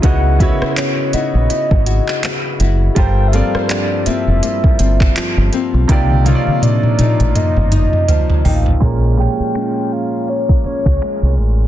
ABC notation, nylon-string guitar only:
X:1
M:4/4
L:1/8
Q:"Swing 16ths" 1/4=82
K:Bb
V:1 name="Nylon-string guitar"
_D, [_C_F_G]2 [CFG] F G C [CFG] | G,, [F,B,C]2 [F,B,C] B, C F, [F,B,C] | C, [F,B,E]2 [F,B,E] B, E F, [F,B,E] | z F, [F,_A,_D]4 A,2 |]